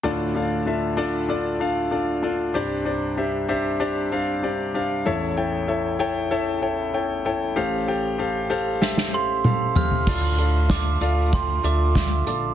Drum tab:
CC |----------------|----------------|----------------|----------------|
HH |----------------|----------------|----------------|----------------|
SD |----------------|----------------|----------------|--------oo------|
T2 |----------------|----------------|----------------|------------o---|
FT |----------------|----------------|----------------|--------------oo|
BD |----------------|----------------|----------------|----------------|

CC |x---------------|
HH |--x-x-x-x-x-x-x-|
SD |----o-------o---|
T2 |----------------|
FT |----------------|
BD |o---o---o---o---|